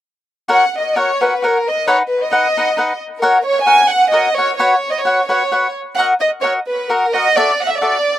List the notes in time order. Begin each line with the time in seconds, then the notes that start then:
0.48 F#4 A#4 C#5 F#5
0.78 D#5
0.96 F#4 A#4 C#5 F#5
1.21 F#4 A#4 B4 C#5 F#5
1.42 F#4 A#4 C#5 F#5
1.66 D#5
1.87 D#4 B4 C#5 D#5 F#5
2.08 B4
2.22 D#5
2.31 D#4 B4 D#5 F#5
2.57 D#4 B4 D#5 F#5
2.77 D#4 B4 D#5 F#5
3.21 F#4 A#4 C#5 F#5
3.45 C#5
3.63 F#4 A#4 G#5
3.67 C#5 F#5
3.89 F#5
4.10 F#4 A#4 D#5 F#5
4.14 C#5
4.33 C#5
4.38 F#4 A#4 C#5 F#5
4.57 F#4 B4 C#5 F#5
4.93 D#5
5.00 C#5
5.05 F#4 B4 C#5 F#5
5.28 F#4 B4 C#5 F#5
5.51 F#4 B4 C#5 F#5
5.95 F#4 F#5
5.99 A#4 D#5 F#5
6.21 D#5
6.41 F#4 A#4 C#5 D#5 F#5
6.68 B4
6.89 F#4 A#4 D#5 F#5
7.14 F#4 A#4 D#5 F#5
7.35 F#4 A4 D5 E5
7.60 F#5
7.68 E5
7.77 F#4 D5
7.82 A4 D5 E5